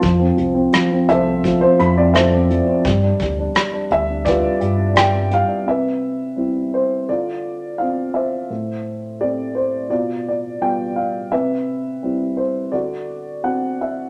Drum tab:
HH |xxxxxxxx|xxxxxxxx|--------|--------|
SD |--r---r-|--r---r-|--------|--------|
BD |o---o---|oo--o---|--------|--------|

HH |--------|
SD |--------|
BD |--------|